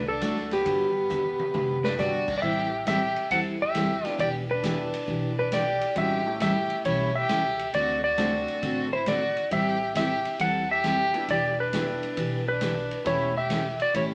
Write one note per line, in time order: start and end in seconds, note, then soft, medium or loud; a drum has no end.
0.00 0.20 C2 medium
0.08 0.49 D4 medium
0.08 0.53 A4 medium
0.21 0.64 D2 medium
0.21 0.34 D3 medium
0.21 0.48 F#3 medium
0.21 0.34 F#3 medium
0.21 0.48 A3 medium
0.21 0.34 A3 medium
0.21 0.48 D4 medium
0.21 0.34 D4 medium
0.21 0.48 F#4 medium
0.21 0.34 F#4 medium
0.21 0.49 A4 medium
0.21 cross-stick medium
0.21 hi-hat pedal soft
0.21 ride medium
0.36 snare soft
0.51 1.80 B3 medium
0.51 1.95 G4 medium
0.51 snare soft
0.51 ride soft
0.65 1.08 G2 medium
0.65 0.88 D3 medium
0.65 0.88 F#3 medium
0.65 0.89 B3 medium
0.65 0.89 D4 medium
0.65 0.89 G4 medium
0.65 kick soft
0.65 ride medium
1.10 1.38 E2 medium
1.10 1.22 D3 medium
1.10 1.22 F#3 medium
1.10 1.22 B3 medium
1.10 1.23 D4 medium
1.10 1.22 G4 medium
1.10 hi-hat pedal medium
1.10 high tom soft
1.39 muted upright bass stroke soft
1.39 high tom medium
1.53 1.97 F#2 medium
1.53 1.77 D3 medium
1.53 1.77 F#3 medium
1.53 1.77 B3 medium
1.53 1.77 D4 medium
1.53 1.77 G4 medium
1.53 mid tom medium
1.84 1.98 D4 medium
1.84 1.99 B4 medium
1.84 snare loud
1.97 2.41 G2 medium
1.97 2.11 D3 medium
1.97 2.11 F#3 medium
1.97 2.25 G3 medium
1.97 2.25 B3 medium
1.97 2.11 B3 medium
1.97 2.25 D4 medium
1.97 2.11 D4 medium
1.97 2.25 F#4 medium
1.97 2.36 F#4 medium
1.97 2.25 G4 medium
1.97 2.11 G4 medium
1.97 2.36 D5 medium
1.97 snare medium
1.97 hi-hat pedal soft
2.28 kick medium
2.28 crash medium
2.37 2.42 F#4 medium
2.37 2.42 D5 medium
2.42 3.13 A1 medium
2.42 2.65 E3 medium
2.42 2.66 G3 medium
2.42 2.66 C4 medium
2.42 2.66 E4 medium
2.42 2.84 G4 medium
2.42 2.66 A4 medium
2.42 2.87 E5 loud
2.42 kick soft
2.86 2.99 E3 medium
2.86 2.99 G3 medium
2.86 2.99 C4 medium
2.86 2.99 E4 medium
2.86 3.28 G4 medium
2.86 2.99 A4 medium
2.86 3.31 E5 loud
2.86 kick soft
2.86 snare medium
2.86 hi-hat pedal medium
2.86 ride medium
3.16 ride soft
3.31 4.02 E2 medium
3.31 3.54 E3 medium
3.31 3.54 G3 medium
3.31 3.54 C4 medium
3.31 3.54 E4 medium
3.31 3.45 A4 medium
3.31 3.55 A4 medium
3.31 3.40 F#5 loud
3.31 kick soft
3.31 ride medium
3.61 4.02 G4 medium
3.61 4.07 E5 medium
3.75 3.87 E3 medium
3.75 3.87 G3 medium
3.75 3.87 C4 medium
3.75 3.88 E4 medium
3.75 3.87 A4 medium
3.75 kick soft
3.75 snare medium
3.75 hi-hat pedal medium
3.75 ride medium
4.02 4.18 G3 medium
4.02 4.18 B3 medium
4.02 4.18 D4 medium
4.02 4.18 E4 medium
4.02 4.16 F4 medium
4.02 4.18 G4 medium
4.02 snare soft
4.02 ride medium
4.07 4.20 D5 medium
4.18 4.90 E1 medium
4.18 4.42 E3 medium
4.18 4.42 B3 medium
4.18 4.42 D4 medium
4.18 4.42 G4 medium
4.18 4.34 G4 medium
4.18 4.28 D5 loud
4.18 kick soft
4.18 ride medium
4.51 5.35 D4 medium
4.51 5.38 B4 medium
4.63 4.76 E3 medium
4.63 4.90 G3 medium
4.63 4.90 B3 medium
4.63 4.76 B3 medium
4.63 4.90 D4 medium
4.63 4.76 D4 medium
4.63 4.91 E4 medium
4.63 4.91 G4 medium
4.63 4.76 G4 medium
4.63 kick soft
4.63 snare medium
4.63 hi-hat pedal medium
4.63 ride medium
4.94 ride medium
5.07 5.79 B1 medium
5.07 5.31 E3 medium
5.07 5.31 B3 medium
5.07 5.31 D4 medium
5.07 5.31 G4 medium
5.07 kick soft
5.38 5.51 D4 medium
5.38 5.53 B4 medium
5.52 5.64 E3 medium
5.52 5.64 B3 medium
5.52 5.65 D4 medium
5.52 5.65 G4 medium
5.52 5.94 G4 medium
5.52 5.98 D5 loud
5.52 kick soft
5.52 snare medium
5.52 hi-hat pedal medium
5.52 ride medium
5.81 ride medium
5.95 6.67 A1 medium
5.95 6.19 E3 medium
5.95 6.23 F#3 medium
5.95 6.19 G3 medium
5.95 6.23 G#3 medium
5.95 6.23 C4 medium
5.95 6.19 C#4 medium
5.95 6.23 D#4 medium
5.95 6.20 E4 medium
5.95 6.24 F#4 medium
5.95 6.38 G4 medium
5.95 6.20 A4 medium
5.95 6.41 E5 loud
5.95 kick soft
5.95 ride medium
6.26 7.21 G3 medium
6.26 7.21 A3 medium
6.26 7.21 C#4 medium
6.26 7.21 E4 medium
6.26 7.21 G4 medium
6.40 6.53 E3 medium
6.40 6.53 G3 medium
6.40 6.53 C#4 medium
6.40 6.53 E4 medium
6.40 6.83 G4 medium
6.40 6.53 A4 medium
6.40 6.83 E5 loud
6.40 kick soft
6.40 snare medium
6.40 hi-hat pedal medium
6.40 ride medium
6.70 ride soft
6.85 7.23 B1 medium
6.85 7.08 E3 medium
6.85 7.08 G3 medium
6.85 7.08 C#4 medium
6.85 7.08 E4 medium
6.85 7.14 E4 medium
6.85 7.09 A4 medium
6.85 7.16 C#5 medium
6.85 kick soft
6.85 ride medium
7.15 7.71 G4 medium
7.15 7.70 E5 loud
7.29 7.67 C#2 medium
7.29 7.41 E3 medium
7.29 7.42 G3 medium
7.29 7.42 C#4 medium
7.29 7.42 E4 medium
7.29 7.42 A4 medium
7.29 kick soft
7.29 snare medium
7.29 hi-hat pedal medium
7.29 ride medium
7.59 ride medium
7.73 8.45 D2 medium
7.73 7.97 D3 medium
7.73 7.97 A3 medium
7.73 7.97 C4 medium
7.73 7.97 F#4 medium
7.73 8.02 F#4 medium
7.73 7.98 A4 medium
7.73 8.03 D5 medium
7.73 kick soft
7.73 ride medium
8.04 8.89 F#4 medium
8.04 8.93 D5 medium
8.17 8.30 D3 medium
8.17 8.86 F#3 medium
8.17 8.86 A3 medium
8.17 8.30 A3 medium
8.17 8.86 C4 medium
8.17 8.31 C4 medium
8.17 8.86 D4 medium
8.17 8.31 F#4 medium
8.17 8.87 F#4 medium
8.17 8.31 A4 medium
8.17 kick soft
8.17 snare medium
8.17 hi-hat pedal medium
8.17 ride medium
8.48 ride soft
8.62 9.33 A1 medium
8.62 8.85 D3 medium
8.62 8.85 A3 medium
8.62 8.86 C4 medium
8.62 8.86 F#4 medium
8.62 8.86 A4 medium
8.62 kick soft
8.62 ride medium
8.93 9.07 E4 medium
8.93 9.08 C5 medium
9.06 9.19 D3 medium
9.06 9.19 A3 medium
9.06 9.20 C4 medium
9.06 9.20 F#4 medium
9.06 9.49 F#4 medium
9.06 9.20 A4 medium
9.06 9.52 D5 medium
9.06 kick soft
9.06 snare medium
9.06 hi-hat pedal medium
9.06 ride medium
9.37 ride soft
9.51 10.22 A1 medium
9.51 9.74 E3 soft
9.51 9.74 G3 medium
9.51 9.74 C4 medium
9.51 9.75 E4 medium
9.51 9.93 G4 medium
9.51 9.75 A4 medium
9.51 9.93 E5 loud
9.51 kick soft
9.51 ride medium
9.95 10.07 E3 medium
9.95 10.07 G3 medium
9.95 10.08 C4 medium
9.95 10.08 E4 medium
9.95 10.38 G4 medium
9.95 10.08 A4 medium
9.95 10.41 E5 medium
9.95 kick soft
9.95 snare medium
9.95 hi-hat pedal medium
9.95 ride medium
10.25 ride soft
10.39 11.11 E2 medium
10.39 10.63 E3 medium
10.39 10.63 G3 medium
10.39 10.63 C4 medium
10.39 10.63 E4 medium
10.39 10.63 A4 medium
10.39 10.68 A4 medium
10.39 10.68 F#5 loud
10.39 kick soft
10.39 ride medium
10.71 11.25 G4 loud
10.71 11.30 E5 medium
10.84 10.96 E3 medium
10.84 10.96 G3 medium
10.84 10.96 C4 medium
10.84 10.97 E4 medium
10.84 10.97 A4 medium
10.84 kick soft
10.84 snare medium
10.84 hi-hat pedal soft
10.84 ride medium
11.14 11.27 G3 medium
11.14 11.27 B3 medium
11.14 11.27 D4 medium
11.14 11.28 E4 medium
11.14 11.28 G4 medium
11.14 ride soft
11.28 11.99 E1 medium
11.28 11.52 E3 medium
11.28 11.52 B3 medium
11.28 11.52 D4 medium
11.28 11.52 G4 medium
11.28 11.57 G4 medium
11.28 11.57 D5 medium
11.28 kick soft
11.28 ride medium
11.60 12.44 D4 medium
11.60 12.47 B4 medium
11.73 11.85 E3 medium
11.73 12.41 G3 medium
11.73 11.85 B3 medium
11.73 12.42 B3 medium
11.73 11.85 D4 medium
11.73 12.42 D4 medium
11.73 12.42 E4 medium
11.73 11.85 G4 medium
11.73 12.42 G4 medium
11.73 kick soft
11.73 snare medium
11.73 hi-hat pedal medium
11.73 ride medium
12.03 ride soft
12.17 12.88 B1 medium
12.17 12.40 E3 medium
12.17 12.40 B3 medium
12.17 12.40 D4 medium
12.17 12.40 G4 medium
12.17 kick soft
12.17 ride medium
12.48 13.03 D4 medium
12.48 13.08 B4 medium
12.61 12.74 E3 medium
12.61 12.74 B3 medium
12.61 12.74 D4 medium
12.61 12.74 G4 medium
12.61 kick soft
12.61 snare medium
12.61 hi-hat pedal medium
12.61 ride medium
12.91 ride soft
13.05 13.77 E1 medium
13.05 13.29 E3 medium
13.05 13.32 G3 medium
13.05 13.32 A3 medium
13.05 13.29 A3 medium
13.05 13.33 C#4 medium
13.05 13.29 C#4 medium
13.05 13.33 E4 medium
13.05 13.34 E4 medium
13.05 13.33 G4 medium
13.05 13.29 G4 medium
13.05 13.34 C#5 medium
13.05 kick soft
13.05 ride medium
13.36 13.77 G4 medium
13.36 13.82 E5 medium
13.50 13.62 E3 medium
13.50 13.62 A3 medium
13.50 13.63 C#4 medium
13.50 13.63 G4 medium
13.50 kick soft
13.50 snare medium
13.50 hi-hat pedal medium
13.50 ride medium
13.80 13.94 F#4 medium
13.80 13.96 D5 medium
13.80 ride medium
13.94 14.14 A1 medium
13.94 14.14 E3 medium
13.94 14.14 A3 medium
13.94 14.14 C#4 medium
13.94 14.08 E4 medium
13.94 14.14 G4 medium
13.94 14.04 C#5 medium
13.94 kick soft
13.94 ride medium